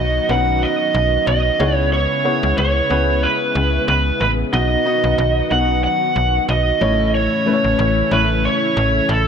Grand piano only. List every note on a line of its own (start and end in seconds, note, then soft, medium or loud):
0.00 0.25 B2 medium
0.00 0.28 B3 medium
0.00 0.35 D#4 medium
0.00 0.29 F#4 medium
0.00 1.61 D#5 medium
0.28 1.46 B3 medium
0.28 0.36 C#4 soft
0.28 1.47 F#4 medium
0.28 1.47 B4 medium
0.35 1.50 D#4 medium
1.59 2.53 C#3 medium
1.59 2.18 B3 medium
1.59 2.18 E4 medium
1.59 2.18 G#4 medium
1.59 2.19 C#5 medium
2.24 2.83 B3 medium
2.24 2.83 E4 medium
2.24 2.84 G#4 medium
2.24 2.84 C#5 medium
2.89 4.07 B3 medium
2.89 4.07 E4 medium
2.89 4.07 G#4 medium
2.89 4.08 B4 medium
4.52 5.47 B2 medium
4.52 4.82 B3 medium
4.52 4.82 D#4 medium
4.52 4.82 F#4 medium
4.52 4.83 D#5 medium
4.85 5.44 B3 medium
4.85 5.44 D#4 medium
4.85 5.44 F#4 medium
4.85 5.45 D#5 medium
5.51 6.68 B3 medium
5.51 6.68 D#4 medium
5.51 6.68 F#4 medium
5.51 6.69 D#5 medium
6.81 7.75 A2 medium
6.81 7.40 A3 medium
6.81 7.40 C#4 medium
6.81 7.40 E4 medium
6.81 7.40 C#5 medium
7.46 8.05 A3 medium
7.46 8.05 C#4 medium
7.46 8.05 E4 medium
7.46 7.54 B4 medium
7.53 8.09 C#5 medium
8.11 9.28 A3 medium
8.11 9.28 C#4 medium
8.11 9.28 E4 medium
8.11 9.28 C#5 medium